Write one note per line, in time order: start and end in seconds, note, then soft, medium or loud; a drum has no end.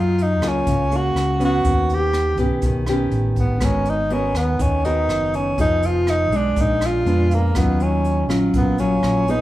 0.00 0.41 F#2 medium
0.00 0.65 F#3 medium
0.00 0.39 A#3 medium
0.00 0.24 F4 medium
0.00 0.39 F4 medium
0.00 0.39 G#4 medium
0.18 closed hi-hat soft
0.23 0.50 D#4 medium
0.41 0.64 C#2 medium
0.41 0.87 A#3 medium
0.41 0.87 F4 medium
0.41 0.88 G#4 medium
0.41 cross-stick medium
0.41 closed hi-hat soft
0.48 0.98 C#4 medium
0.67 1.12 C#2 medium
0.67 1.63 C#3 medium
0.67 kick medium
0.67 closed hi-hat medium
0.92 1.36 A#3 medium
0.92 1.37 G#4 medium
0.92 closed hi-hat soft
0.97 1.43 F#4 medium
1.14 1.61 C#2 medium
1.14 cross-stick medium
1.14 closed hi-hat soft
1.40 2.34 B3 medium
1.40 2.34 C#4 medium
1.40 closed hi-hat soft
1.45 1.95 F#4 loud
1.64 2.38 D#2 medium
1.64 2.60 D#3 medium
1.64 kick medium
1.64 closed hi-hat medium
1.89 closed hi-hat soft
1.94 2.41 G4 medium
2.13 cross-stick medium
2.13 closed hi-hat soft
2.37 2.61 B1 medium
2.37 2.83 B3 medium
2.37 2.84 C#4 medium
2.37 2.84 G4 medium
2.37 kick medium
2.37 closed hi-hat soft
2.62 3.08 B1 medium
2.62 3.60 D#3 medium
2.62 kick medium
2.62 closed hi-hat medium
2.86 3.58 B3 medium
2.86 3.58 C#4 medium
2.86 3.58 G4 medium
2.86 cross-stick medium
2.86 closed hi-hat soft
3.10 3.57 A1 medium
3.10 closed hi-hat soft
3.36 3.66 B3 medium
3.36 kick medium
3.36 closed hi-hat soft
3.60 4.35 G#1 medium
3.60 4.57 G#3 medium
3.60 3.93 B3 soft
3.60 3.93 F#4 soft
3.60 3.93 A#4 medium
3.60 kick medium
3.60 cross-stick medium
3.60 closed hi-hat medium
3.64 3.91 C#4 medium
3.85 closed hi-hat soft
3.90 4.15 D#4 medium
4.10 4.80 B3 medium
4.10 4.38 C#4 medium
4.10 4.81 F#4 medium
4.10 4.81 A#4 medium
4.10 closed hi-hat soft
4.34 4.57 D#2 medium
4.34 4.63 B3 medium
4.34 cross-stick medium
4.34 closed hi-hat soft
4.59 5.05 D#2 medium
4.59 5.55 D#3 medium
4.59 4.86 C#4 medium
4.59 kick medium
4.59 closed hi-hat medium
4.85 5.54 B3 medium
4.85 5.37 D#4 medium
4.85 5.54 F#4 medium
4.85 5.55 A#4 medium
4.85 closed hi-hat soft
5.08 5.54 F#1 medium
5.08 cross-stick medium
5.08 closed hi-hat soft
5.34 5.59 C#4 medium
5.34 closed hi-hat soft
5.58 6.31 F1 medium
5.58 6.32 F3 soft
5.58 6.28 B3 medium
5.58 6.28 D#4 medium
5.58 5.88 D#4 loud
5.58 6.29 G#4 medium
5.58 kick medium
5.58 closed hi-hat medium
5.82 6.12 F4 loud
5.82 closed hi-hat soft
6.07 6.38 D#4 medium
6.07 cross-stick medium
6.07 closed hi-hat soft
6.31 6.54 B1 medium
6.31 7.02 G#3 medium
6.31 7.02 D4 medium
6.31 closed hi-hat soft
6.37 6.63 D4 medium
6.56 7.02 A#1 medium
6.56 7.53 A#2 medium
6.56 kick medium
6.56 closed hi-hat medium
6.61 6.88 D#4 medium
6.81 cross-stick medium
6.81 closed hi-hat soft
6.86 7.36 F4 loud
7.05 7.51 F2 medium
7.05 7.51 G#3 medium
7.05 7.51 B3 medium
7.05 7.51 D4 medium
7.05 closed hi-hat soft
7.31 7.59 A#3 medium
7.31 closed hi-hat soft
7.55 8.28 D#2 medium
7.55 8.51 D#3 medium
7.55 8.25 F#3 medium
7.55 7.84 B3 medium
7.55 8.25 C#4 medium
7.55 8.26 F4 medium
7.55 kick medium
7.55 cross-stick medium
7.55 closed hi-hat medium
7.80 8.28 C#4 medium
7.80 closed hi-hat soft
8.04 closed hi-hat soft
8.28 8.51 A#1 medium
8.28 8.74 F#3 medium
8.28 8.74 C#4 medium
8.28 8.75 F4 medium
8.28 cross-stick medium
8.28 closed hi-hat soft
8.54 8.99 A#1 medium
8.54 9.41 A#2 medium
8.54 8.81 B3 medium
8.54 kick medium
8.54 closed hi-hat medium
8.78 9.24 F#3 medium
8.78 9.32 C#4 medium
8.78 9.24 C#4 medium
8.78 9.24 F4 medium
8.78 closed hi-hat soft
9.03 9.41 A#1 medium
9.03 cross-stick medium
9.03 closed hi-hat soft
9.28 9.41 B3 medium
9.28 9.41 D#4 medium
9.28 9.41 D#4 loud
9.28 9.41 G#4 medium
9.28 closed hi-hat soft